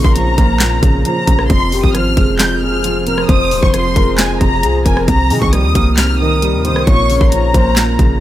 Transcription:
0.00 0.59 A#2 loud
0.00 0.81 C#3 medium
0.00 1.48 C#4 medium
0.00 5.04 F4 medium
0.00 1.46 A#4 medium
0.04 0.37 A#1 loud
0.04 0.15 C6 medium
0.04 kick medium
0.15 1.04 F3 medium
0.15 1.01 A#5 medium
0.15 closed hi-hat medium
0.38 0.81 A#1 loud
0.38 1.50 A#3 medium
0.38 kick loud
0.38 closed hi-hat medium
0.60 1.50 A#2 medium
0.60 snare loud
0.60 clap medium
0.60 closed hi-hat loud
0.83 1.04 A#1 loud
0.83 1.26 C#3 medium
0.83 kick loud
0.83 closed hi-hat medium
1.05 1.50 F3 medium
1.05 1.47 A#5 medium
1.05 closed hi-hat medium
1.27 1.49 A#1 loud
1.27 1.50 C#3 medium
1.27 kick medium
1.27 closed hi-hat medium
1.39 cross-stick loud
1.50 1.82 F1 loud
1.50 2.38 F2 loud
1.50 5.04 F3 medium
1.50 5.04 G#4 medium
1.50 5.04 C5 medium
1.50 1.81 C6 loud
1.50 kick loud
1.50 closed hi-hat medium
1.72 2.60 C3 medium
1.72 1.94 G4 medium
1.72 open hi-hat medium
1.83 2.16 G#1 loud
1.83 1.94 D#6 medium
1.83 kick medium
1.95 2.83 F3 medium
1.95 2.37 F6 medium
1.95 cross-stick medium
1.95 closed hi-hat medium
2.17 3.25 F1 loud
2.17 3.29 G#3 medium
2.17 kick loud
2.17 closed hi-hat medium
2.39 3.27 F2 loud
2.39 2.61 G6 medium
2.39 snare loud
2.39 clap medium
2.39 closed hi-hat medium
2.62 3.05 C3 medium
2.62 3.04 G#4 medium
2.62 3.04 F6 medium
2.84 3.72 F3 medium
2.84 closed hi-hat medium
3.06 3.50 C3 medium
3.06 3.28 A#4 medium
3.06 3.28 F6 medium
3.06 closed hi-hat medium
3.18 cross-stick loud
3.29 3.53 F1 loud
3.29 4.17 F2 loud
3.29 3.92 C5 loud
3.29 3.61 D#6 loud
3.29 kick loud
3.29 closed hi-hat medium
3.51 3.62 D#1 loud
3.51 4.39 C3 medium
3.51 open hi-hat medium
3.62 3.95 F1 loud
3.62 3.73 C#6 medium
3.62 kick medium
3.74 4.62 F3 medium
3.74 4.16 C6 medium
3.74 cross-stick medium
3.74 closed hi-hat medium
3.96 4.39 F1 loud
3.96 5.08 G#3 medium
3.96 4.17 A#4 medium
3.96 kick medium
3.96 closed hi-hat medium
4.18 5.08 F2 medium
4.18 4.40 G#5 medium
4.18 snare loud
4.18 clap medium
4.18 closed hi-hat medium
4.41 4.65 F1 loud
4.41 4.84 C3 medium
4.41 4.83 A#5 loud
4.41 kick loud
4.41 closed hi-hat medium
4.63 4.85 C2 loud
4.63 5.08 F3 medium
4.63 4.85 G#4 medium
4.63 closed hi-hat medium
4.86 5.07 F1 loud
4.86 5.07 C3 medium
4.86 5.07 A#4 medium
4.86 5.07 G#5 medium
4.86 kick medium
4.86 closed hi-hat medium
4.97 cross-stick loud
5.08 5.32 C2 loud
5.08 5.96 C3 loud
5.08 6.85 C3 medium
5.08 6.85 C4 medium
5.08 6.85 D#4 medium
5.08 8.20 A#4 medium
5.08 5.40 A#5 loud
5.08 kick loud
5.08 closed hi-hat medium
5.30 5.41 C3 loud
5.30 6.18 D#3 medium
5.30 5.52 G#4 medium
5.30 open hi-hat medium
5.42 5.65 C2 loud
5.42 5.52 C#6 medium
5.42 kick medium
5.53 6.41 G3 loud
5.53 5.95 D#6 medium
5.53 cross-stick medium
5.53 closed hi-hat medium
5.64 5.75 D#2 loud
5.75 6.55 C2 loud
5.75 6.87 A#3 medium
5.75 kick medium
5.75 closed hi-hat medium
5.97 6.87 C3 loud
5.97 6.19 F6 medium
5.97 snare loud
5.97 clap medium
5.97 closed hi-hat medium
6.20 6.63 D#3 medium
6.20 6.62 A#4 medium
6.20 6.62 D#6 medium
6.42 6.87 G3 medium
6.42 closed hi-hat medium
6.54 6.72 D#2 loud
6.65 6.87 D#3 medium
6.65 6.86 C5 medium
6.65 6.86 D#6 medium
6.65 closed hi-hat medium
6.70 6.86 C2 loud
6.76 cross-stick loud
6.87 7.19 A#1 loud
6.87 7.75 A#2 loud
6.87 8.20 C#4 medium
6.87 8.20 F4 medium
6.87 7.50 C#5 loud
6.87 7.19 C#6 loud
6.87 kick loud
6.87 closed hi-hat medium
7.09 7.98 C#3 medium
7.09 open hi-hat medium
7.21 7.53 A#1 loud
7.21 7.31 C6 medium
7.21 kick loud
7.32 8.20 F3 medium
7.32 8.17 A#5 medium
7.32 closed hi-hat medium
7.54 7.97 A#1 loud
7.54 8.20 A#3 medium
7.54 7.75 C5 medium
7.54 kick loud
7.54 closed hi-hat medium
7.76 8.20 A#2 medium
7.76 snare loud
7.76 clap medium
7.76 closed hi-hat medium
7.99 8.20 A#1 loud
7.99 8.20 C#3 medium
7.99 kick medium
7.99 closed hi-hat medium

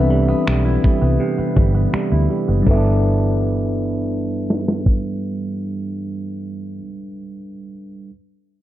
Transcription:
0.00 0.32 C2 loud
0.00 2.62 E3 medium
0.00 0.28 B3 medium
0.00 2.62 C4 medium
0.00 2.63 D4 medium
0.00 2.68 A4 medium
0.00 2.63 B4 medium
0.00 2.67 E5 medium
0.10 0.47 G3 medium
0.29 1.01 B3 medium
0.47 0.76 B1 medium
0.47 0.83 G3 medium
0.47 finger snap loud
0.65 2.11 E4 medium
0.84 1.56 G3 medium
0.84 kick loud
1.02 1.17 C2 medium
1.02 1.38 B3 medium
1.20 2.74 C3 medium
1.38 1.74 B3 medium
1.38 muted fingered electric bass stroke soft
1.56 1.86 G1 medium
1.56 1.93 G3 medium
1.56 kick medium
1.75 2.48 B3 medium
1.93 2.30 G3 medium
1.93 finger snap loud
1.93 muted fingered electric bass stroke soft
2.12 2.26 D2 medium
2.12 2.76 E4 medium
2.30 2.67 G3 medium
2.48 2.63 F#1 medium
2.48 2.72 B3 medium
2.62 6.79 G2 medium
2.62 6.77 G3 medium
2.66 6.79 G1 loud
2.66 6.85 E3 medium
2.66 6.79 D4 medium
2.66 6.81 A4 medium
2.66 6.82 B4 medium
2.66 kick medium
2.66 crash medium
2.71 6.89 B3 medium
2.71 6.84 E5 medium
2.77 6.93 D4 medium
4.50 snare medium
4.68 snare medium
4.86 kick medium

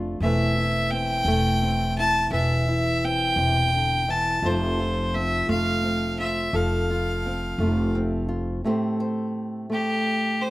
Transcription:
0.00 0.17 F1 medium
0.00 0.18 F3 medium
0.00 0.23 A3 medium
0.00 0.18 D4 soft
0.00 0.18 F4 medium
0.00 0.25 A4 medium
0.20 1.22 E1 medium
0.20 2.28 E3 medium
0.20 1.27 A3 soft
0.20 0.92 C4 medium
0.20 0.93 E5 medium
0.25 0.57 E4 medium
0.25 2.30 B4 medium
0.58 1.28 E4 medium
0.91 1.62 C4 medium
0.91 1.97 G5 loud
1.25 2.27 E1 medium
1.25 2.35 A3 medium
1.25 1.97 E4 medium
1.62 3.04 C4 soft
1.98 2.67 E4 medium
1.98 2.30 A5 medium
2.31 3.32 E1 medium
2.31 3.72 E3 medium
2.31 4.39 B4 medium
2.31 3.06 E5 medium
2.68 4.43 E4 soft
3.04 4.45 C4 medium
3.04 4.12 G5 loud
3.36 4.38 E1 medium
3.36 3.73 C3 medium
3.74 4.08 D3 medium
4.08 4.43 E3 medium
4.08 4.47 A5 medium
4.42 5.44 F1 medium
4.42 6.49 F3 medium
4.42 5.48 A3 medium
4.42 5.15 C4 medium
4.42 4.79 F4 medium
4.42 5.16 C5 medium
4.47 6.54 A4 medium
4.80 5.49 F4 medium
5.15 5.83 C4 medium
5.15 5.49 E5 medium
5.48 6.50 F1 medium
5.48 7.60 A3 medium
5.48 6.19 F4 medium
5.48 6.15 F5 medium
5.83 7.24 C4 medium
6.19 6.50 F4 medium
6.19 6.56 E5 medium
6.53 7.55 F1 medium
6.53 8.60 F3 medium
6.53 8.67 A4 medium
6.53 7.95 F5 medium
6.90 7.60 F4 medium
7.26 7.94 C4 medium
7.58 8.60 F1 medium
7.58 8.61 A3 medium
7.58 8.27 F4 medium
7.95 8.65 C4 medium
8.29 8.60 F4 medium
8.64 10.50 A2 medium
8.64 9.69 A3 medium
8.64 10.50 C4 medium
8.64 10.41 G4 medium
8.64 9.00 C5 medium
9.00 10.50 C5 medium
9.70 10.50 A3 medium
9.70 10.43 G4 medium
10.41 10.50 G4 soft
10.41 10.50 C5 medium

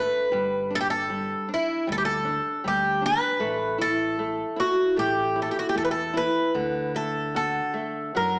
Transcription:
0.00 0.30 A3 medium
0.00 0.75 B4 medium
0.32 1.34 G1 medium
0.32 1.09 G3 medium
0.71 1.09 D4 soft
0.75 0.80 A4 medium
0.81 0.86 G4 medium
0.90 1.48 A4 medium
1.10 1.48 G3 soft
1.49 1.86 D4 medium
1.54 1.87 E4 medium
1.87 2.38 D2 loud
1.87 2.24 G3 medium
1.92 1.97 A4 medium
1.98 2.03 G4 medium
2.05 2.67 A4 medium
2.25 2.63 D4 medium
2.64 3.15 D2 medium
2.64 3.01 G3 medium
2.64 3.05 G4 medium
3.02 3.39 D4 soft
3.06 3.77 B4 loud
3.40 4.43 A1 medium
3.40 4.18 A3 medium
3.78 4.16 E4 soft
3.78 4.59 A4 medium
4.19 4.56 A3 medium
4.56 4.95 E4 medium
4.56 4.95 F#4 medium
4.96 5.48 A1 loud
4.96 5.73 A3 medium
4.96 5.42 G4 medium
5.36 5.74 E4 medium
5.42 5.50 A4 medium
5.51 5.59 G4 medium
5.59 5.67 F#4 medium
5.69 5.77 G4 medium
5.74 6.27 E2 medium
5.74 6.13 A3 medium
5.74 5.83 A4 medium
5.85 5.90 B4 medium
5.91 6.17 A4 medium
6.14 6.53 E4 medium
6.14 6.92 B4 medium
6.54 7.60 D2 medium
6.54 8.11 D3 medium
6.95 7.33 A3 soft
6.95 7.35 A4 medium
7.35 7.74 F#4 soft
7.35 8.12 A4 medium
7.74 8.14 A3 medium
8.15 8.39 F#2 medium
8.15 8.39 F#3 medium
8.15 8.39 A#4 medium

